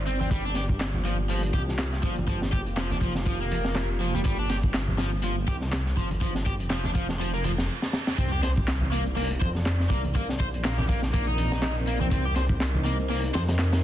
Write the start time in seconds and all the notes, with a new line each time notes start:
Already playing: G1 C4 D#4 C5 D5
0.06 C4, closed hi-hat
0.20 C4, high conga
0.31 G1 G3 A#3 F4 G4, kick, closed hi-hat
0.45 D4
0.55 G4, snare, closed hi-hat
0.69 kick
0.80 snare, clap, closed hi-hat
0.94 high conga, low conga
1.05 F3, closed hi-hat
1.29 F3, open hi-hat
1.43 closed hi-hat
1.53 C2 G4, kick, closed hi-hat, high conga
1.69 snare
1.79 snare, clap, closed hi-hat
1.93 snare
2.03 G1 F3, kick, closed hi-hat
2.16 closed hi-hat, high conga, low conga
2.28 F3, kick, closed hi-hat
2.42 snare
2.52 G4, kick, closed hi-hat
2.66 F1, closed hi-hat
2.77 F3, snare, clap, closed hi-hat
2.91 D4, snare, high conga, low conga
3.01 F3, kick, closed hi-hat
3.15 snare
3.26 F3, kick, closed hi-hat
3.40 A#3
3.51 closed hi-hat, high conga
3.65 snare
3.75 snare, clap, closed hi-hat
4.00 F3, closed hi-hat
4.14 G3, high conga
4.24 G1 G3, kick, closed hi-hat
4.39 D4
4.49 G4, snare, closed hi-hat
4.63 kick
4.74 snare, clap, closed hi-hat
4.88 high conga, low conga
4.98 F3, snare, closed hi-hat
5.22 F3, closed hi-hat
5.48 C2 G4, kick, closed hi-hat, high conga
5.61 snare
5.72 snare, clap, closed hi-hat
5.86 snare
5.97 G1 F3, kick, closed hi-hat
6.11 closed hi-hat, high conga, low conga
6.21 F3, kick, closed hi-hat
6.35 snare
6.46 G4, kick, closed hi-hat
6.60 F1, closed hi-hat
6.70 F3, snare, clap, closed hi-hat
6.84 D4, snare, high conga, low conga
6.95 F3, kick, closed hi-hat
7.09 snare
7.20 F3, closed hi-hat, reverse cymbal
7.34 A#3
7.44 F3, closed hi-hat, high conga
7.58 snare
7.82 snare
7.93 snare
8.07 snare
8.18 C2 C4 D#4 A#4 D5, kick, closed hi-hat, sub drop, shaker
8.32 G4, shaker
8.43 C5, snare, closed hi-hat
8.57 kick, shaker
8.67 snare, clap, closed hi-hat, shaker
8.81 high conga, low conga, shaker
8.92 A#3, closed hi-hat
9.06 shaker
9.16 A#3, open hi-hat, shaker
9.31 closed hi-hat, shaker
9.41 F2 C5, kick, closed hi-hat, high conga
9.55 snare, shaker
9.65 snare, clap, closed hi-hat, shaker
9.80 snare, shaker
9.90 C2 A#3, kick, closed hi-hat
10.04 closed hi-hat, high conga, low conga, shaker
10.15 A#3, kick, closed hi-hat, shaker
10.29 snare, shaker
10.39 C5, kick, closed hi-hat
10.53 A#1, closed hi-hat, shaker
10.64 A#3, snare, clap, closed hi-hat, shaker
10.78 G4, snare, high conga, low conga, shaker
10.89 A#3, kick, closed hi-hat
11.02 snare, shaker
11.13 A#3, kick, closed hi-hat, shaker
11.27 D#4, shaker
11.38 closed hi-hat, high conga
11.52 snare, shaker
11.62 snare, clap, closed hi-hat, shaker
11.77 shaker
11.87 A#3, closed hi-hat
12.01 C4, high conga, shaker
12.11 C2 C4 D#5, kick, closed hi-hat, shaker
12.25 G4, shaker
12.36 C5, snare, closed hi-hat
12.49 kick, shaker
12.60 snare, clap, closed hi-hat, shaker
12.75 high conga, low conga, shaker
12.85 A#3, closed hi-hat
13.00 shaker
13.10 A#3, open hi-hat, shaker
13.24 closed hi-hat, shaker
13.34 F2 C5, snare, closed hi-hat, high conga
13.48 snare, closed hi-hat, shaker
13.59 snare, clap, closed hi-hat, shaker
13.73 snare, closed hi-hat, shaker